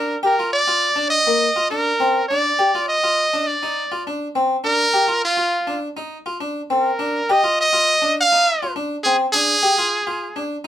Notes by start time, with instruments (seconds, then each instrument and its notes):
Already playing: harpsichord D4, trumpet A#4
0.23 harpsichord G4, trumpet A#4
0.39 harpsichord F4
0.53 trumpet D5
0.68 harpsichord F4
0.96 harpsichord D4
1.10 trumpet D#5
1.27 harpsichord A#3
1.56 harpsichord F4
1.71 harpsichord D4, trumpet A#4
2.00 harpsichord C4
2.29 harpsichord D4, trumpet D5
2.59 harpsichord G4
2.75 harpsichord F4
2.89 trumpet D#5
3.03 harpsichord F4
3.34 harpsichord D4
3.47 trumpet D5
3.63 harpsichord D#4
3.92 harpsichord F4
4.07 harpsichord D4
4.35 harpsichord C4
4.64 harpsichord D4, trumpet A#4
4.93 harpsichord G4
5.08 harpsichord F4
5.25 trumpet F4
5.37 harpsichord F4
5.67 harpsichord D4
5.97 harpsichord D#4
6.26 harpsichord F4
6.40 harpsichord D4
6.70 harpsichord C4, trumpet A#4
6.99 harpsichord D4
7.29 harpsichord G4, trumpet D#5
7.44 harpsichord F4
7.61 trumpet D#5
7.73 harpsichord F4
8.02 harpsichord D4
8.21 trumpet F5
8.32 harpsichord D#4
8.63 harpsichord F4
8.76 harpsichord D4
9.04 harpsichord C4, trumpet G#4
9.32 harpsichord D4, trumpet G#4
9.63 harpsichord G4
9.78 harpsichord F4
10.07 harpsichord F4
10.36 harpsichord D4